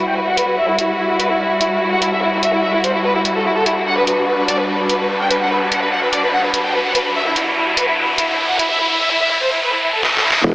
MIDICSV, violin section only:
0, 0, Header, 1, 2, 480
1, 0, Start_track
1, 0, Key_signature, 1, "minor"
1, 0, Tempo, 410959
1, 677, Time_signature, 4, 2, 24, 8
1, 12321, End_track
2, 0, Start_track
2, 0, Title_t, "Violin section"
2, 0, Program_c, 0, 48
2, 83, Note_on_c, 0, 79, 87
2, 164, Note_off_c, 0, 79, 0
2, 198, Note_on_c, 0, 71, 61
2, 285, Note_off_c, 0, 71, 0
2, 323, Note_on_c, 0, 78, 93
2, 404, Note_off_c, 0, 78, 0
2, 439, Note_on_c, 0, 71, 63
2, 526, Note_off_c, 0, 71, 0
2, 565, Note_on_c, 0, 71, 62
2, 645, Note_off_c, 0, 71, 0
2, 679, Note_on_c, 0, 76, 98
2, 766, Note_off_c, 0, 76, 0
2, 804, Note_on_c, 0, 64, 66
2, 884, Note_off_c, 0, 64, 0
2, 920, Note_on_c, 0, 64, 67
2, 1006, Note_off_c, 0, 64, 0
2, 1161, Note_on_c, 0, 64, 66
2, 1247, Note_off_c, 0, 64, 0
2, 1284, Note_on_c, 0, 64, 62
2, 1364, Note_off_c, 0, 64, 0
2, 1398, Note_on_c, 0, 71, 90
2, 1485, Note_off_c, 0, 71, 0
2, 1522, Note_on_c, 0, 64, 64
2, 1604, Note_off_c, 0, 64, 0
2, 1638, Note_on_c, 0, 64, 65
2, 1725, Note_off_c, 0, 64, 0
2, 1878, Note_on_c, 0, 64, 67
2, 1965, Note_off_c, 0, 64, 0
2, 2005, Note_on_c, 0, 64, 64
2, 2085, Note_off_c, 0, 64, 0
2, 2119, Note_on_c, 0, 64, 63
2, 2206, Note_off_c, 0, 64, 0
2, 2243, Note_on_c, 0, 78, 85
2, 2324, Note_off_c, 0, 78, 0
2, 2358, Note_on_c, 0, 64, 61
2, 2445, Note_off_c, 0, 64, 0
2, 2481, Note_on_c, 0, 76, 90
2, 2563, Note_off_c, 0, 76, 0
2, 2596, Note_on_c, 0, 64, 63
2, 2684, Note_off_c, 0, 64, 0
2, 2721, Note_on_c, 0, 64, 64
2, 2803, Note_off_c, 0, 64, 0
2, 2836, Note_on_c, 0, 76, 89
2, 2924, Note_off_c, 0, 76, 0
2, 2961, Note_on_c, 0, 64, 65
2, 3043, Note_off_c, 0, 64, 0
2, 3075, Note_on_c, 0, 76, 90
2, 3164, Note_off_c, 0, 76, 0
2, 3200, Note_on_c, 0, 64, 63
2, 3282, Note_off_c, 0, 64, 0
2, 3316, Note_on_c, 0, 72, 83
2, 3404, Note_off_c, 0, 72, 0
2, 3441, Note_on_c, 0, 64, 61
2, 3523, Note_off_c, 0, 64, 0
2, 3554, Note_on_c, 0, 71, 95
2, 3643, Note_off_c, 0, 71, 0
2, 3679, Note_on_c, 0, 64, 61
2, 3762, Note_off_c, 0, 64, 0
2, 3793, Note_on_c, 0, 64, 64
2, 3883, Note_off_c, 0, 64, 0
2, 3918, Note_on_c, 0, 69, 88
2, 4001, Note_off_c, 0, 69, 0
2, 4033, Note_on_c, 0, 64, 61
2, 4123, Note_off_c, 0, 64, 0
2, 4158, Note_on_c, 0, 69, 92
2, 4241, Note_off_c, 0, 69, 0
2, 4273, Note_on_c, 0, 64, 61
2, 4363, Note_off_c, 0, 64, 0
2, 4396, Note_on_c, 0, 64, 60
2, 4480, Note_off_c, 0, 64, 0
2, 4514, Note_on_c, 0, 78, 98
2, 4603, Note_off_c, 0, 78, 0
2, 4637, Note_on_c, 0, 71, 66
2, 4721, Note_off_c, 0, 71, 0
2, 4755, Note_on_c, 0, 71, 65
2, 4844, Note_off_c, 0, 71, 0
2, 4995, Note_on_c, 0, 71, 63
2, 5084, Note_off_c, 0, 71, 0
2, 5118, Note_on_c, 0, 71, 64
2, 5201, Note_off_c, 0, 71, 0
2, 5231, Note_on_c, 0, 74, 90
2, 5322, Note_off_c, 0, 74, 0
2, 5357, Note_on_c, 0, 71, 62
2, 5441, Note_off_c, 0, 71, 0
2, 5474, Note_on_c, 0, 71, 67
2, 5563, Note_off_c, 0, 71, 0
2, 5715, Note_on_c, 0, 71, 67
2, 5804, Note_off_c, 0, 71, 0
2, 5842, Note_on_c, 0, 71, 63
2, 5923, Note_off_c, 0, 71, 0
2, 5957, Note_on_c, 0, 71, 62
2, 6045, Note_off_c, 0, 71, 0
2, 6081, Note_on_c, 0, 79, 87
2, 6163, Note_off_c, 0, 79, 0
2, 6197, Note_on_c, 0, 71, 61
2, 6285, Note_off_c, 0, 71, 0
2, 6321, Note_on_c, 0, 78, 93
2, 6403, Note_off_c, 0, 78, 0
2, 6437, Note_on_c, 0, 71, 65
2, 6525, Note_off_c, 0, 71, 0
2, 6561, Note_on_c, 0, 71, 64
2, 6643, Note_off_c, 0, 71, 0
2, 6677, Note_on_c, 0, 78, 92
2, 6765, Note_off_c, 0, 78, 0
2, 6800, Note_on_c, 0, 71, 68
2, 6882, Note_off_c, 0, 71, 0
2, 6917, Note_on_c, 0, 78, 90
2, 7004, Note_off_c, 0, 78, 0
2, 7044, Note_on_c, 0, 71, 64
2, 7124, Note_off_c, 0, 71, 0
2, 7158, Note_on_c, 0, 74, 89
2, 7245, Note_off_c, 0, 74, 0
2, 7285, Note_on_c, 0, 71, 65
2, 7365, Note_off_c, 0, 71, 0
2, 7396, Note_on_c, 0, 78, 96
2, 7484, Note_off_c, 0, 78, 0
2, 7521, Note_on_c, 0, 71, 65
2, 7603, Note_off_c, 0, 71, 0
2, 7638, Note_on_c, 0, 71, 64
2, 7725, Note_off_c, 0, 71, 0
2, 7760, Note_on_c, 0, 79, 86
2, 7842, Note_off_c, 0, 79, 0
2, 7875, Note_on_c, 0, 71, 64
2, 7964, Note_off_c, 0, 71, 0
2, 7999, Note_on_c, 0, 78, 98
2, 8082, Note_off_c, 0, 78, 0
2, 8115, Note_on_c, 0, 71, 63
2, 8203, Note_off_c, 0, 71, 0
2, 8240, Note_on_c, 0, 71, 62
2, 8322, Note_off_c, 0, 71, 0
2, 8354, Note_on_c, 0, 76, 100
2, 8443, Note_off_c, 0, 76, 0
2, 8481, Note_on_c, 0, 64, 66
2, 8563, Note_off_c, 0, 64, 0
2, 8597, Note_on_c, 0, 64, 67
2, 8685, Note_off_c, 0, 64, 0
2, 8837, Note_on_c, 0, 64, 65
2, 8925, Note_off_c, 0, 64, 0
2, 8961, Note_on_c, 0, 64, 64
2, 9043, Note_off_c, 0, 64, 0
2, 9076, Note_on_c, 0, 71, 89
2, 9164, Note_off_c, 0, 71, 0
2, 9200, Note_on_c, 0, 64, 64
2, 9282, Note_off_c, 0, 64, 0
2, 9317, Note_on_c, 0, 64, 66
2, 9405, Note_off_c, 0, 64, 0
2, 9558, Note_on_c, 0, 64, 67
2, 9645, Note_off_c, 0, 64, 0
2, 9683, Note_on_c, 0, 64, 65
2, 9764, Note_off_c, 0, 64, 0
2, 9796, Note_on_c, 0, 64, 63
2, 9884, Note_off_c, 0, 64, 0
2, 9921, Note_on_c, 0, 78, 92
2, 10003, Note_off_c, 0, 78, 0
2, 10038, Note_on_c, 0, 64, 64
2, 10125, Note_off_c, 0, 64, 0
2, 10161, Note_on_c, 0, 76, 95
2, 10243, Note_off_c, 0, 76, 0
2, 10276, Note_on_c, 0, 64, 66
2, 10364, Note_off_c, 0, 64, 0
2, 10402, Note_on_c, 0, 64, 67
2, 10483, Note_off_c, 0, 64, 0
2, 10517, Note_on_c, 0, 76, 96
2, 10605, Note_off_c, 0, 76, 0
2, 10641, Note_on_c, 0, 64, 64
2, 10723, Note_off_c, 0, 64, 0
2, 10759, Note_on_c, 0, 76, 90
2, 10845, Note_off_c, 0, 76, 0
2, 10882, Note_on_c, 0, 64, 63
2, 10963, Note_off_c, 0, 64, 0
2, 10998, Note_on_c, 0, 72, 89
2, 11085, Note_off_c, 0, 72, 0
2, 11123, Note_on_c, 0, 64, 67
2, 11204, Note_off_c, 0, 64, 0
2, 11239, Note_on_c, 0, 71, 97
2, 11326, Note_off_c, 0, 71, 0
2, 11364, Note_on_c, 0, 64, 65
2, 11444, Note_off_c, 0, 64, 0
2, 11479, Note_on_c, 0, 64, 68
2, 11566, Note_off_c, 0, 64, 0
2, 11603, Note_on_c, 0, 69, 93
2, 11684, Note_off_c, 0, 69, 0
2, 11720, Note_on_c, 0, 64, 64
2, 11806, Note_off_c, 0, 64, 0
2, 11844, Note_on_c, 0, 69, 97
2, 11924, Note_off_c, 0, 69, 0
2, 11961, Note_on_c, 0, 64, 64
2, 12046, Note_off_c, 0, 64, 0
2, 12086, Note_on_c, 0, 64, 67
2, 12165, Note_off_c, 0, 64, 0
2, 12321, End_track
0, 0, End_of_file